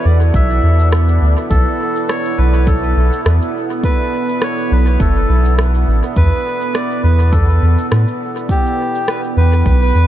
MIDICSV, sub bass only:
0, 0, Header, 1, 2, 480
1, 0, Start_track
1, 0, Key_signature, 2, "minor"
1, 0, Tempo, 582524
1, 1242, Time_signature, 4, 2, 24, 8
1, 8298, End_track
2, 0, Start_track
2, 0, Title_t, "Sub bass"
2, 0, Program_c, 0, 38
2, 43, Note_on_c, 0, 40, 94
2, 256, Note_off_c, 0, 40, 0
2, 282, Note_on_c, 0, 35, 102
2, 496, Note_off_c, 0, 35, 0
2, 521, Note_on_c, 0, 40, 97
2, 981, Note_off_c, 0, 40, 0
2, 1001, Note_on_c, 0, 38, 80
2, 1118, Note_off_c, 0, 38, 0
2, 1240, Note_on_c, 0, 35, 98
2, 1358, Note_off_c, 0, 35, 0
2, 1963, Note_on_c, 0, 35, 94
2, 2422, Note_off_c, 0, 35, 0
2, 2442, Note_on_c, 0, 35, 83
2, 2559, Note_off_c, 0, 35, 0
2, 2683, Note_on_c, 0, 40, 98
2, 2799, Note_off_c, 0, 40, 0
2, 3884, Note_on_c, 0, 35, 91
2, 4097, Note_off_c, 0, 35, 0
2, 4120, Note_on_c, 0, 30, 102
2, 4335, Note_off_c, 0, 30, 0
2, 4360, Note_on_c, 0, 35, 96
2, 4820, Note_off_c, 0, 35, 0
2, 4841, Note_on_c, 0, 33, 82
2, 4958, Note_off_c, 0, 33, 0
2, 5080, Note_on_c, 0, 40, 100
2, 5197, Note_off_c, 0, 40, 0
2, 5798, Note_on_c, 0, 40, 95
2, 6259, Note_off_c, 0, 40, 0
2, 6282, Note_on_c, 0, 40, 88
2, 6399, Note_off_c, 0, 40, 0
2, 6523, Note_on_c, 0, 45, 98
2, 6639, Note_off_c, 0, 45, 0
2, 7719, Note_on_c, 0, 40, 95
2, 7934, Note_off_c, 0, 40, 0
2, 7958, Note_on_c, 0, 35, 102
2, 8174, Note_off_c, 0, 35, 0
2, 8197, Note_on_c, 0, 40, 96
2, 8298, Note_off_c, 0, 40, 0
2, 8298, End_track
0, 0, End_of_file